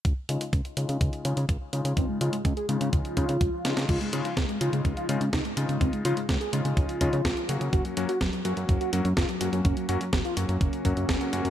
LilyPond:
<<
  \new Staff \with { instrumentName = "Electric grand piano" } { \time 4/4 \key des \major \tempo 4 = 125 r8 <des aes des' ees' f'>16 r8. <des aes des' ees' f'>4 <des aes des' ees' f'>16 r8. <des aes des' ees' f'>8~ | <des aes des' ees' f'>8 <des aes des' ees' f'>16 r8. <des aes des' ees' f'>4 <des aes des' ees' f'>16 r8. <des aes des' ees' f'>8~ | <des aes des' ees' f'>8 <des aes des' ees' f'>16 r8. <des aes des' ees' f'>4 <des aes des' ees' f'>16 r8. <des aes des' ees' f'>8~ | <des aes des' ees' f'>8 <des aes des' ees' f'>16 r8. <des aes des' ees' f'>4 <des aes des' ees' f'>16 r8. <ges bes des' ges'>8~ |
<ges bes des' ges'>8 <ges bes des' ges'>16 r8. <ges bes des' ges'>4 <ges bes des' ges'>16 r8. <ges bes des' ges'>8~ | <ges bes des' ges'>8 <ges bes des' ges'>16 r8. <ges bes des' ges'>4 <ges bes des' ges'>8. <ges bes des' ges'>16 <ges bes des' ges'>8 | }
  \new Staff \with { instrumentName = "Analog synth lead" } { \clef bass \time 4/4 \key des \major r1 | c'16 aes16 f'16 aes16 aes16 aes'16 aes16 aes16 f'4.~ f'16 r16 | f'16 aes16 aes16 f'16 aes16 aes16 f'16 aes16 aes16 f'16 aes16 aes16 ees'16 aes16 aes16 aes16 | c'16 aes16 f'16 aes16 aes16 aes'16 aes16 aes16 f'4.~ f'16 r16 |
ges'16 ges16 ges16 ges'16 ges16 ges16 ges'16 ges16 ges16 ges'16 ges16 ges16 f'16 ges16 ges16 ges16 | des'16 ges16 ges'16 ges16 ges16 f'16 ges16 ges16 des'4.~ des'16 r16 | }
  \new Staff \with { instrumentName = "Analog synth bass" } { \clef bass \time 4/4 \key des \major des,16 r16 des16 r16 des,16 r16 des16 des16 des,16 r16 des16 des16 des,16 r16 des16 des16 | des,16 r16 des16 r16 des,16 r16 des16 des16 des,16 r16 des16 des16 des,16 r16 des16 des16 | des,16 r16 des16 r16 des,16 r16 des16 des16 des,16 r16 des16 des16 des,16 r16 des16 des16 | des,16 r16 des16 r16 des,16 r16 des16 des16 des,16 r16 des16 des16 des,16 r16 des16 des16 |
ges,,16 r16 ges,16 r16 ges,,16 r16 ges,16 ges,16 ges,,16 r16 ges,16 ges,16 ges,,16 r16 ges,16 ges,16 | ges,,16 r16 ges,16 r16 ges,,16 r16 ges,16 ges,16 ges,,16 r16 ges,16 ges,16 ges,,16 r16 ges,16 ges,16 | }
  \new DrumStaff \with { instrumentName = "Drums" } \drummode { \time 4/4 <hh bd>8 hh16 hh16 <hh bd>16 hh16 hh16 hh16 <hh bd>16 hh16 hh16 hh16 <hh bd>8 hh16 hh16 | <hh bd>8 hh16 hh16 <hh bd>16 hh16 hh16 hh16 <hh bd>16 hh16 <hh bd>16 hh16 <hh bd>8 <hh sn>16 <hh sn>16 | <cymc hh bd>16 hh16 hh16 hh16 <hh bd sn>16 hh16 hh16 hh16 <hh bd>16 hh16 hh16 hh16 <hh bd sn>16 hh16 hh16 hh16 | <hh bd>16 hh16 hh16 hh16 <hh bd sn>16 hh16 hh16 hh16 <hh bd>16 hh16 <hh bd>16 hh16 <hh bd sn>16 hh16 hh16 hh16 |
<hh bd>16 hh16 hh16 hh16 <hh bd sn>16 hh16 hh16 hh16 <hh bd>16 hh16 hh16 hh16 <hh bd sn>16 hh16 hh16 hh16 | <hh bd>16 hh16 hh16 hh16 <hh bd sn>16 hh16 hh16 hh16 <hh bd>16 hh16 <hh bd>16 hh16 <hh bd sn>16 hh16 hh16 hh16 | }
>>